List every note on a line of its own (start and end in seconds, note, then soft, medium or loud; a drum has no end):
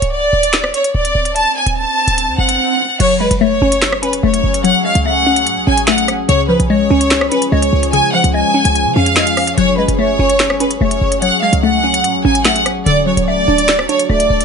0.00 0.32 C#1 loud
0.00 closed hi-hat medium
0.00 swell medium
0.12 0.70 D5 medium
0.33 0.72 D1 loud
0.43 closed hi-hat medium
0.53 finger snap medium
0.53 snare loud
0.64 cross-stick loud
0.74 0.90 C#5 medium
0.74 closed hi-hat medium
0.84 closed hi-hat medium
0.95 1.14 D1 loud
0.95 1.33 D5 medium
1.05 closed hi-hat medium
1.15 1.45 D1 loud
1.25 closed hi-hat medium
1.36 1.52 A5 loud
1.36 closed hi-hat medium
1.56 1.72 G#5 medium
1.66 1.86 D1 loud
1.66 closed hi-hat medium
1.77 2.35 A5 loud
2.08 2.30 D1 loud
2.08 closed hi-hat medium
2.18 closed hi-hat medium
2.28 2.38 D2 loud
2.38 2.58 F#1 loud
2.38 2.97 F#5 medium
2.49 closed hi-hat medium
3.00 3.30 F#1 loud
3.00 6.26 F#3 medium
3.00 4.03 F#3 loud
3.00 6.26 C#4 medium
3.00 12.82 G#4 medium
3.00 3.16 C#5 loud
3.00 closed hi-hat medium
3.00 crash loud
3.21 4.23 G#3 medium
3.21 3.37 B4 medium
3.31 3.60 F#1 loud
3.31 closed hi-hat medium
3.41 4.22 A3 loud
3.41 3.99 C#5 loud
3.62 4.21 F#1 loud
3.62 4.01 C#4 medium
3.72 closed hi-hat medium
3.82 finger snap medium
3.82 snare loud
3.92 cross-stick loud
4.03 5.05 C#4 medium
4.03 4.19 B4 medium
4.03 closed hi-hat medium
4.13 closed hi-hat medium
4.23 4.43 F1 loud
4.23 5.04 A3 medium
4.23 4.62 C#5 medium
4.34 closed hi-hat medium
4.44 4.73 F#1 loud
4.54 closed hi-hat medium
4.64 5.67 F#3 medium
4.64 4.80 F#5 loud
4.64 closed hi-hat medium
4.85 5.88 G#3 medium
4.85 5.01 F5 medium
4.95 5.48 C#2 loud
4.95 closed hi-hat medium
5.06 5.86 A3 medium
5.06 5.64 F#5 loud
5.27 5.66 C#4 medium
5.36 closed hi-hat medium
5.47 5.58 A2 loud
5.47 closed hi-hat medium
5.57 5.67 C#2 loud
5.67 6.26 A1 loud
5.67 6.29 C#4 medium
5.67 5.83 G#5 medium
5.77 closed hi-hat medium
5.87 6.29 A3 medium
5.87 6.04 F#5 medium
5.87 finger snap loud
5.87 snare loud
5.98 closed hi-hat medium
6.08 cross-stick medium
6.08 closed hi-hat medium
6.29 6.58 C#2 loud
6.29 7.31 C#3 loud
6.29 9.54 F3 medium
6.29 9.54 G#3 medium
6.29 12.82 C#4 medium
6.29 6.45 C#5 loud
6.29 closed hi-hat medium
6.49 7.52 F3 medium
6.49 6.65 B4 medium
6.60 6.89 B1 loud
6.60 closed hi-hat medium
6.70 7.51 G#3 loud
6.70 7.28 C#5 loud
6.90 7.30 C#2 loud
6.90 7.31 C#4 medium
7.01 closed hi-hat medium
7.10 finger snap loud
7.10 snare loud
7.21 cross-stick loud
7.31 8.34 C#4 medium
7.31 7.47 B4 medium
7.31 closed hi-hat medium
7.42 closed hi-hat medium
7.52 7.72 C#2 loud
7.52 8.33 G#3 loud
7.52 7.91 C#5 medium
7.62 closed hi-hat medium
7.73 8.02 C#2 loud
7.83 closed hi-hat medium
7.93 8.96 C#3 loud
7.93 8.09 G#5 loud
7.93 closed hi-hat medium
8.14 9.17 F3 medium
8.14 8.30 F#5 medium
8.24 8.44 C#2 loud
8.24 closed hi-hat medium
8.34 9.15 G#3 loud
8.34 8.92 G#5 loud
8.54 8.95 C#4 medium
8.65 8.87 C#2 loud
8.65 closed hi-hat medium
8.75 closed hi-hat medium
8.86 8.95 C#3 loud
8.96 9.55 F2 loud
8.96 9.58 C#4 medium
8.96 9.54 F5 medium
9.06 closed hi-hat medium
9.16 9.58 G#3 loud
9.16 finger snap medium
9.16 snare loud
9.27 closed hi-hat medium
9.37 cross-stick medium
9.37 closed hi-hat soft
9.37 open hi-hat medium
9.47 closed hi-hat medium
9.58 9.87 F#1 loud
9.58 14.45 F#3 medium
9.58 10.60 F#3 loud
9.58 9.74 C#5 loud
9.58 closed hi-hat medium
9.78 10.81 G#3 medium
9.78 9.94 B4 medium
9.88 10.18 F#1 loud
9.88 closed hi-hat medium
9.99 10.80 A3 loud
9.99 10.57 C#5 loud
10.19 10.78 F#1 loud
10.19 10.59 C#4 medium
10.30 closed hi-hat medium
10.39 finger snap medium
10.39 snare loud
10.50 cross-stick loud
10.60 11.63 C#4 medium
10.60 10.77 B4 medium
10.60 closed hi-hat medium
10.71 closed hi-hat medium
10.81 11.01 F1 loud
10.81 11.62 A3 medium
10.81 11.20 C#5 medium
10.91 closed hi-hat medium
11.01 11.31 F#1 loud
11.12 closed hi-hat medium
11.22 12.25 F#3 loud
11.22 11.38 F#5 loud
11.22 closed hi-hat medium
11.43 12.45 G#3 medium
11.43 11.58 F5 medium
11.53 12.06 C#2 loud
11.53 closed hi-hat medium
11.63 12.44 A3 loud
11.63 12.21 F#5 medium
11.84 12.24 C#4 medium
11.94 closed hi-hat medium
12.04 12.16 A2 loud
12.04 closed hi-hat medium
12.15 12.24 C#2 loud
12.25 12.84 A1 loud
12.25 12.86 C#4 medium
12.25 12.41 G#5 medium
12.35 closed hi-hat medium
12.45 12.86 A3 medium
12.45 12.61 F#5 loud
12.45 finger snap medium
12.45 snare loud
12.56 closed hi-hat medium
12.66 cross-stick medium
12.66 closed hi-hat medium
12.86 13.16 D1 loud
12.86 13.89 D3 loud
12.86 14.45 D4 medium
12.86 14.45 A4 medium
12.86 13.02 D5 loud
12.86 closed hi-hat medium
13.06 14.09 F#3 medium
13.06 13.23 C#5 medium
13.17 13.47 C#1 loud
13.17 closed hi-hat medium
13.27 14.08 A3 medium
13.27 13.85 D5 loud
13.48 13.88 D1 loud
13.48 13.88 D4 medium
13.58 closed hi-hat medium
13.68 finger snap loud
13.68 snare loud
13.79 cross-stick loud
13.89 14.45 D4 medium
13.89 14.05 C#5 medium
13.89 closed hi-hat medium
13.99 closed hi-hat loud
14.09 14.29 D1 loud
14.09 14.45 A3 loud
14.09 14.45 D5 medium
14.20 closed hi-hat medium
14.30 14.45 D1 loud
14.41 closed hi-hat medium